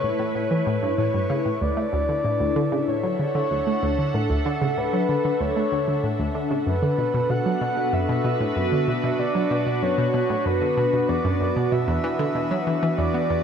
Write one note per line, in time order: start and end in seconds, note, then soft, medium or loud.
0.00 0.10 A2 medium
0.00 1.62 A3 medium
0.00 3.41 E4 medium
0.00 2.99 B4 medium
0.00 0.98 C#5 loud
0.19 0.26 A2 loud
0.35 0.45 A2 medium
0.51 0.61 E3 medium
0.67 0.77 A2 loud
0.83 0.93 G2 loud
0.98 1.09 A2 medium
0.98 1.63 C#5 loud
1.14 1.24 G2 medium
1.30 1.40 C#3 loud
1.46 1.52 A2 medium
1.61 1.72 D2 medium
1.61 8.01 D4 medium
1.61 2.90 D5 loud
1.77 1.87 A3 medium
1.93 2.08 D2 loud
2.08 2.24 D3 medium
2.08 8.69 A4 medium
2.14 7.61 E5 medium
2.25 2.40 A2 medium
2.40 2.51 D2 loud
2.56 2.66 D3 loud
2.72 2.78 C#3 loud
2.76 7.95 F#5 medium
2.88 3.03 A2 medium
2.88 4.16 C#5 loud
3.03 3.18 F#3 medium
3.19 3.26 D3 medium
3.35 3.41 D3 loud
3.51 3.61 D2 medium
3.67 3.77 A3 medium
3.83 3.98 D2 loud
3.99 4.13 D3 medium
4.14 4.29 A2 medium
4.14 4.79 A4 medium
4.30 4.40 D2 loud
4.46 4.56 D3 loud
4.62 4.68 C#3 loud
4.77 4.92 A2 medium
4.77 5.42 B4 medium
4.93 5.08 F#3 medium
5.09 5.15 D3 medium
5.25 5.31 D3 loud
5.40 5.51 D2 medium
5.40 6.35 C#5 loud
5.56 5.67 A3 medium
5.72 5.87 D2 loud
5.88 6.03 D3 medium
6.04 6.19 A2 medium
6.19 6.30 D2 loud
6.35 6.45 D3 loud
6.51 6.57 C#3 loud
6.66 6.82 F#2 medium
6.66 13.43 B3 medium
6.66 7.31 B4 loud
6.82 6.97 D3 medium
6.98 7.04 B2 medium
6.98 13.43 F#4 medium
7.10 7.20 B2 loud
7.10 13.43 B4 medium
7.30 7.40 B2 medium
7.30 7.94 F#5 loud
7.46 7.56 F#3 medium
7.61 7.76 B2 loud
7.77 7.92 B2 medium
7.93 8.08 F#2 medium
7.93 9.21 E5 loud
8.02 12.86 D4 medium
8.09 8.19 B2 loud
8.24 8.35 B2 loud
8.40 8.47 A2 loud
8.56 8.71 F#2 medium
8.72 8.87 D3 medium
8.88 8.94 B2 medium
9.04 9.10 B2 loud
9.19 9.30 B2 medium
9.19 9.83 D5 loud
9.35 9.45 F#3 medium
9.51 9.65 B2 loud
9.67 9.82 B2 medium
9.82 9.97 F#2 medium
9.82 10.47 C#5 loud
9.98 10.09 B2 loud
10.14 10.24 B2 loud
10.30 10.36 A2 loud
10.45 10.61 F#2 medium
10.45 11.10 B4 loud
10.61 10.76 D3 medium
10.77 10.88 B2 loud
10.93 11.03 B2 medium
11.08 11.19 E2 loud
11.08 11.73 D5 loud
11.25 11.39 F#2 loud
11.41 11.51 F#2 medium
11.56 11.67 B2 medium
11.72 11.87 B2 medium
11.72 13.43 E3 medium
11.72 12.97 E5 loud
11.88 11.98 E2 loud
12.04 12.14 E3 loud
12.19 12.26 D3 loud
12.35 12.50 B2 medium
12.51 12.66 F#3 medium
12.67 12.73 E3 medium
12.83 12.89 E3 loud
12.83 13.43 F#5 medium
12.98 13.09 E2 medium
12.98 13.43 D5 loud
13.14 13.24 B3 medium
13.30 13.43 E2 loud